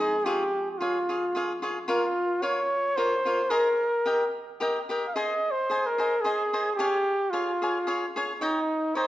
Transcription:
Already playing: harp C4 F4, trumpet G#4
0.00 cavaquinho D#4 G#4 C5 D#5
0.24 cavaquinho F4 G#4 C#5 F5, trumpet G4
0.71 trumpet G4
0.78 trumpet F4, cavaquinho F4 G#4 C#5
0.82 cavaquinho F5
1.09 cavaquinho F4 G#4 C#5 F5
1.35 cavaquinho F4 G#4 C#5 F5
1.62 cavaquinho F4 G#4 C#5 F5
1.88 cavaquinho F4 A#4 C#5 F5, trumpet F4
2.42 cavaquinho F4 A#4 C#5 F5, trumpet C#5
2.96 cavaquinho F4 A#4 C#5 F5, trumpet C5
3.25 cavaquinho F4 A#4 C#5 F5
3.50 cavaquinho G#4 A#4 D#5 G#5, trumpet A#4
4.05 cavaquinho G4 A#4 D#5 G5
4.60 cavaquinho G4 A#4 D#5 G5
4.89 cavaquinho G4 A#4 D#5 G5
5.07 trumpet F5
5.15 cavaquinho G#4 C5 D#5 G#5, trumpet D#5
5.51 trumpet C5
5.70 cavaquinho G#4 C5 D#5 G#5
5.86 trumpet A#4
5.98 cavaquinho G#4 C5 D#5 G#5
6.21 trumpet G#4, cavaquinho G#4 C5
6.25 cavaquinho D#5 G#5
6.53 cavaquinho G#4 C5 D#5 G#5
6.76 trumpet G4, cavaquinho G#4 F5
6.80 cavaquinho C#5 G#5
7.30 trumpet F4, cavaquinho G#4 C#5 F5 G#5
7.62 cavaquinho G#4 C#5 F5 G#5
7.87 cavaquinho G#4 C#5 F5 G#5
8.16 cavaquinho G#4 C#5 F5 G#5
8.41 trumpet D#4, cavaquinho C#5 D#5 G5 A#5
8.95 trumpet C5, cavaquinho C#5 D#5 G5 A#5

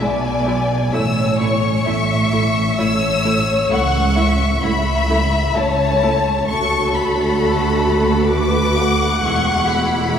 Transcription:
0.00 double bass section B1, cello section B2, viola section G#3, violin section D5 G#5
0.45 viola section G#3 E4
0.92 double bass section A1, cello section A2, viola section A3 E4, violin section C#5 E6
1.39 viola section A3 E4, violin section C#6
1.85 double bass section A1, cello section A2, viola section A3 E4, violin section E5
2.31 viola section A3 E4
2.78 double bass section A1, cello section A2, viola section A3 E4, violin section C#5 E6
3.24 viola section A3 E4
3.70 double bass section C#2, cello section C#2, viola section A3 E4, violin section F#5 C#6
4.16 viola section A3 E4, violin section E5
4.62 double bass section C#2, cello section C#2, viola section A3 E4, violin section E5 B5
5.09 viola section A3 E4
5.54 double bass section C#2, cello section C#2, viola section A3 E4, violin section C#5 A5
6.02 viola section A3 E4
6.47 double bass section D2, cello section D2, viola section A3 F#4, violin section A4 C#6
6.94 violin section B5
8.28 violin section B4 D6
8.77 violin section F#5
9.23 double bass section E1, cello section E2, viola section G#3 E4, violin section C#6
9.70 violin section B5

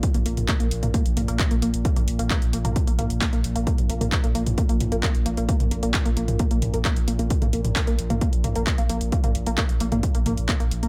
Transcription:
Already playing: synth drone A#2
0.03 kick, closed hi-hat
0.14 sub bass A#1, synth arpeggio sound A#3, closed hi-hat, mid tom
0.26 sub bass A#1, synth arpeggio sound A#3, open hi-hat
0.37 sub bass A#1, closed hi-hat, mid tom
0.48 synth arpeggio sound A#3, kick, clap, closed hi-hat
0.60 sub bass A#1, synth arpeggio sound A#3, closed hi-hat
0.71 sub bass A#1, open hi-hat
0.83 sub bass A#1, synth arpeggio sound A#3, closed hi-hat, mid tom
0.94 synth arpeggio sound A#3, kick, closed hi-hat
1.06 sub bass A#1, closed hi-hat
1.17 sub bass A#1, synth arpeggio sound A#3, mid tom, open hi-hat
1.28 sub bass A#1, synth arpeggio sound A#3, closed hi-hat
1.39 kick, clap, closed hi-hat
1.51 sub bass A#1, synth arpeggio sound A#3, closed hi-hat
1.62 sub bass A#1, synth arpeggio sound A#3, open hi-hat
1.74 sub bass A#1, closed hi-hat
1.85 synth arpeggio sound A#3, kick, closed hi-hat
1.96 sub bass A#1, synth arpeggio sound A#3, closed hi-hat, mid tom
2.08 sub bass A#1, open hi-hat
2.19 sub bass A#1, synth arpeggio sound A#3, closed hi-hat
2.30 synth arpeggio sound A#3, kick, clap, closed hi-hat
2.42 sub bass A#1, closed hi-hat
2.53 sub bass A#1, synth arpeggio sound A#3, open hi-hat
2.65 sub bass A#1, synth arpeggio sound A#3, closed hi-hat, mid tom
2.76 kick, closed hi-hat
2.87 sub bass A#1, synth arpeggio sound A#3, closed hi-hat
2.99 sub bass A#1, synth arpeggio sound A#3, mid tom, open hi-hat
3.10 sub bass A#1, closed hi-hat
3.21 synth arpeggio sound A#3, kick, clap, closed hi-hat
3.33 sub bass A#1, synth arpeggio sound A#3, closed hi-hat
3.44 sub bass A#1, open hi-hat
3.56 sub bass A#1, synth arpeggio sound A#3, closed hi-hat
3.67 synth arpeggio sound A#3, kick, closed hi-hat
3.78 sub bass A#1, closed hi-hat, mid tom
3.89 sub bass A#1, synth arpeggio sound A#3, open hi-hat
4.01 sub bass A#1, synth arpeggio sound A#3, closed hi-hat, mid tom
4.12 kick, clap, closed hi-hat
4.24 sub bass A#1, synth arpeggio sound A#3, closed hi-hat
4.35 sub bass A#1, synth arpeggio sound A#3, open hi-hat
4.46 sub bass A#1, closed hi-hat, mid tom
4.58 synth arpeggio sound A#3, kick, closed hi-hat
4.69 sub bass A#1, synth arpeggio sound A#3, closed hi-hat
4.80 sub bass A#1, mid tom, open hi-hat
4.92 sub bass A#1, synth arpeggio sound A#3, closed hi-hat
5.03 synth arpeggio sound A#3, kick, clap, closed hi-hat
5.15 sub bass A#1, closed hi-hat
5.26 sub bass A#1, synth arpeggio sound A#3, open hi-hat
5.37 sub bass A#1, synth arpeggio sound A#3, closed hi-hat
5.49 synth arpeggio sound A#3, kick, closed hi-hat
5.60 sub bass A#1, closed hi-hat, mid tom
5.71 sub bass A#1, synth arpeggio sound A#3, open hi-hat
5.83 sub bass A#1, synth arpeggio sound A#3, closed hi-hat
5.94 kick, clap, closed hi-hat
6.05 sub bass A#1, synth arpeggio sound A#3, closed hi-hat
6.17 sub bass A#1, synth arpeggio sound A#3, open hi-hat
6.28 sub bass A#1, closed hi-hat, mid tom
6.39 synth arpeggio sound A#3, kick, closed hi-hat
6.51 sub bass A#1, synth arpeggio sound A#3, closed hi-hat
6.62 sub bass A#1, mid tom, open hi-hat
6.74 sub bass A#1, synth arpeggio sound A#3, closed hi-hat
6.85 synth arpeggio sound A#3, kick, clap, closed hi-hat
6.96 sub bass A#1, closed hi-hat
7.07 sub bass A#1, synth arpeggio sound A#3, open hi-hat
7.19 sub bass A#1, synth arpeggio sound A#3, closed hi-hat
7.30 kick, closed hi-hat
7.42 sub bass A#1, synth arpeggio sound A#3, closed hi-hat, mid tom
7.53 sub bass A#1, synth arpeggio sound A#3, open hi-hat
7.64 sub bass A#1, closed hi-hat, mid tom
7.76 synth arpeggio sound A#3, kick, clap, closed hi-hat
7.87 sub bass A#1, synth arpeggio sound A#3, closed hi-hat
7.99 sub bass A#1, open hi-hat
8.10 sub bass A#1, synth arpeggio sound A#3, closed hi-hat, mid tom
8.21 synth arpeggio sound A#3, kick, closed hi-hat
8.33 sub bass A#1, closed hi-hat
8.44 sub bass A#1, synth arpeggio sound A#3, mid tom, open hi-hat
8.55 sub bass A#1, synth arpeggio sound A#3, closed hi-hat
8.67 kick, clap, closed hi-hat
8.78 sub bass A#1, synth arpeggio sound A#3, closed hi-hat
8.89 sub bass A#1, synth arpeggio sound A#3, open hi-hat
9.01 sub bass A#1, closed hi-hat
9.12 synth arpeggio sound A#3, kick, closed hi-hat
9.24 sub bass A#1, synth arpeggio sound A#3, closed hi-hat, mid tom
9.35 sub bass A#1, open hi-hat
9.46 sub bass A#1, synth arpeggio sound A#3, closed hi-hat
9.58 synth arpeggio sound A#3, kick, clap, closed hi-hat
9.69 sub bass A#1, closed hi-hat
9.80 sub bass A#1, synth arpeggio sound A#3, open hi-hat
9.92 sub bass A#1, synth arpeggio sound A#3, closed hi-hat, mid tom
10.03 kick, closed hi-hat
10.15 sub bass A#1, synth arpeggio sound A#3, closed hi-hat
10.26 sub bass A#1, synth arpeggio sound A#3, mid tom, open hi-hat
10.37 sub bass A#1, closed hi-hat
10.49 synth arpeggio sound A#3, kick, clap, closed hi-hat
10.60 sub bass A#1, synth arpeggio sound A#3, closed hi-hat
10.71 sub bass A#1, open hi-hat
10.83 sub bass A#1, synth arpeggio sound A#3, closed hi-hat

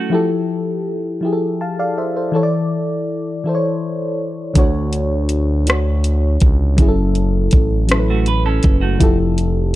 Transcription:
Already playing: fm electric piano F#3 C#4 E4 A4, clean electric guitar A3 F#4
0.10 fm electric piano F3 E4 G4
0.14 fm electric piano A4
1.21 fm electric piano F3 E4 G4
1.26 fm electric piano G#4
1.33 fm electric piano A4
1.61 fm electric piano F5 A5
1.79 fm electric piano D5 F5
1.98 fm electric piano C5 E5
2.16 fm electric piano A4 C5
2.32 fm electric piano E3 E4 A4
2.36 fm electric piano C#5
2.43 fm electric piano D5
3.44 fm electric piano E3 E4 A4
3.49 fm electric piano C5
3.55 fm electric piano C#5
4.54 analog synth bass D2, fm electric piano D3 D4 F#4, kick, closed hi-hat
4.59 fm electric piano C#5
4.93 closed hi-hat
5.29 closed hi-hat
5.66 fm electric piano D3 D4 F#4, closed hi-hat
5.70 fm electric piano C#5, cross-stick
6.04 closed hi-hat
6.40 analog synth bass C#2, kick, closed hi-hat
6.77 analog synth bass F#1, fm electric piano F#3 C#4 E4, kick, closed hi-hat
6.82 fm electric piano G#4
6.88 fm electric piano A4
7.15 closed hi-hat
7.51 analog synth bass A1, kick, closed hi-hat
7.88 fm electric piano F#3 C#4 E4, cross-stick, closed hi-hat
7.93 fm electric piano A4
7.99 fm electric piano B4
8.10 clean electric guitar A3 F#4
8.26 clean electric guitar B4, closed hi-hat
8.46 clean electric guitar C#4 A4
8.63 analog synth bass F#1, kick, closed hi-hat
8.81 clean electric guitar A3 F#4
8.99 analog synth bass F1, fm electric piano F3 E4 G4, kick, closed hi-hat
9.03 fm electric piano A4
9.38 closed hi-hat

